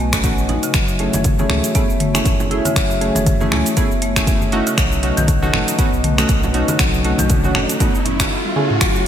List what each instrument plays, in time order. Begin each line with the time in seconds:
Already playing: sub bass B1, analog synth pad F#4 B4 D#5 G#5
0.00 marimba A3
0.13 synth keys A3 C#4 D#4 F#4, finger snap, kick, closed hi-hat, high conga, shaker
0.24 sub bass A1, synth keys A3 C#4 D#4 F#4, kick, closed hi-hat, shaker
0.38 high conga, shaker
0.49 marimba D#4, closed hi-hat, low conga
0.63 marimba C#3, closed hi-hat, shaker
0.74 sub bass F#1, marimba F#3, analog synth pad C#5 E5, finger snap, kick, closed hi-hat, shaker
0.88 shaker
0.99 marimba A3, synth keys A3 C#4 E4 G#4, closed hi-hat
1.13 sub bass F#1, marimba E3, closed hi-hat, high conga, shaker
1.24 kick, closed hi-hat, mid tom, shaker
1.39 synth keys A3 C#4 E4 G#4, high conga, shaker
1.50 sub bass C#2, marimba A3, finger snap, low conga
1.64 closed hi-hat, shaker
1.75 synth keys A3 C#4 E4 G#4, marimba B3, kick, closed hi-hat, shaker
1.90 sub bass F#1, shaker
2.00 marimba A3, closed hi-hat, mid tom
2.14 synth keys A3 C#4 E4 G#4, finger snap, closed hi-hat, high conga, shaker
2.25 sub bass F#1, kick, closed hi-hat, low conga, shaker
2.40 low conga, shaker
2.51 synth keys A3 C#4 E4 G#4, marimba E4, closed hi-hat, high conga
2.65 marimba C#3, closed hi-hat, high conga, shaker
2.76 sub bass F#1, marimba F#3, finger snap, kick, closed hi-hat, shaker
2.91 shaker
3.01 marimba A3, synth keys A3 C#4 E4 G#4, closed hi-hat
3.15 sub bass F#1, marimba E3, closed hi-hat, high conga, shaker
3.26 kick, closed hi-hat, mid tom, shaker
3.40 synth keys A3 C#4 E4 G#4, high conga, shaker
3.52 sub bass C#2, marimba A3, finger snap, low conga
3.66 closed hi-hat, shaker
3.77 synth keys A3 C#4 E4 G#4, marimba B3, kick, closed hi-hat, shaker
3.92 sub bass F#1, shaker
4.02 marimba A3, closed hi-hat
4.16 synth keys A3 C#4 E4 G#4, finger snap, kick, closed hi-hat, high conga, shaker
4.27 sub bass F#1, kick, closed hi-hat, shaker
4.41 high conga, shaker
4.52 synth keys A3 C#4 D#4 F#4, marimba E4, closed hi-hat
4.67 marimba C#3, closed hi-hat, shaker
4.78 sub bass B1, marimba F#3, analog synth pad B4 D#5, finger snap, kick, closed hi-hat, riser, shaker
4.92 shaker
5.03 marimba A3, synth keys A3 C#4 D#4 F#4, closed hi-hat
5.17 sub bass B1, marimba D#3, closed hi-hat, high conga, shaker
5.28 kick, closed hi-hat, mid tom, shaker
5.42 synth keys A3 C#4 D#4 F#4, high conga, shaker
5.53 sub bass F#1, marimba A3, finger snap, low conga
5.68 closed hi-hat, shaker
5.79 synth keys A3 C#4 D#4 F#4, marimba B3, kick, closed hi-hat, shaker
5.93 sub bass B1, shaker
6.04 marimba A3, closed hi-hat, mid tom
6.18 synth keys A3 C#4 D#4 F#4, finger snap, closed hi-hat, high conga, shaker
6.29 sub bass B1, kick, closed hi-hat, low conga, shaker
6.43 low conga, shaker
6.53 synth keys A3 C#4 D#4 F#4, marimba D#4, closed hi-hat, high conga
6.68 marimba C#3, closed hi-hat, high conga, shaker
6.79 sub bass B1, marimba F#3, finger snap, kick, closed hi-hat, shaker
6.94 shaker
7.04 marimba A3, synth keys A3 C#4 D#4 F#4, closed hi-hat
7.18 sub bass B1, marimba D#3, closed hi-hat, high conga, low conga, shaker
7.30 kick, closed hi-hat, mid tom, shaker
7.44 synth keys A3 C#4 D#4 F#4, high conga, shaker
7.55 sub bass F#1, marimba A3, finger snap, low conga
7.69 closed hi-hat, shaker
7.80 synth keys A3 C#4 D#4 F#4, marimba B3, kick, closed hi-hat, shaker
7.95 sub bass F#1, shaker
8.05 marimba C#4, closed hi-hat, low conga
8.20 synth keys A3 C#4 D#4 F#4, finger snap, kick, closed hi-hat, high conga, shaker
8.45 high tom
8.56 synth keys A3 C#4 E4 G#4, mid tom
8.70 mid tom
8.81 sub bass F#1, marimba F#3, analog synth pad F#4 C#5 E5, finger snap, kick, closed hi-hat, shaker
8.96 shaker